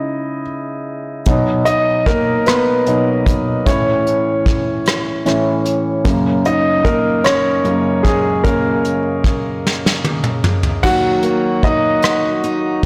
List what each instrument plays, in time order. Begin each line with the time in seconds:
Already playing: grand piano C#3 G#3 D#4 E4 D#5
1.26 grand piano B2 F#3 D#4, kick, closed hi-hat
1.65 grand piano D#4 D#5, closed hi-hat
2.06 grand piano A#3 A#4, kick, closed hi-hat
2.46 grand piano B3 B4, cross-stick, closed hi-hat
2.86 grand piano B2 F#3 D#4, closed hi-hat
3.26 kick, closed hi-hat
3.65 grand piano A2 E3 C#4 C#5, kick, closed hi-hat
4.07 closed hi-hat
4.46 kick, closed hi-hat
4.86 cross-stick, closed hi-hat
5.25 grand piano A2 E3 C#4, cross-stick, closed hi-hat
5.66 closed hi-hat
6.04 grand piano F#2 C#3 A#3, kick, closed hi-hat
6.45 grand piano D#4 D#5, closed hi-hat
6.84 grand piano A#3 A#4, kick, closed hi-hat
7.24 grand piano C#4 C#5, cross-stick, closed hi-hat
7.64 grand piano F#2 C#3 A#3, closed hi-hat
8.03 grand piano G#3 G#4, kick, closed hi-hat
8.44 grand piano F#2 C#3 A#3 A#4, kick, closed hi-hat
8.85 closed hi-hat
9.24 kick, closed hi-hat
9.67 snare
9.86 snare
10.04 high tom
10.24 mid tom
10.44 mid tom
10.63 floor tom
10.83 grand piano D#3 F#3 A#3 F#4 F#5, steel-string acoustic guitar F#3 F#4, kick, crash
11.23 steel-string acoustic guitar A#3, closed hi-hat
11.63 steel-string acoustic guitar D#4, grand piano D#4 D#5, kick, closed hi-hat
12.02 steel-string acoustic guitar F#4, cross-stick, closed hi-hat
12.43 steel-string acoustic guitar D#4, closed hi-hat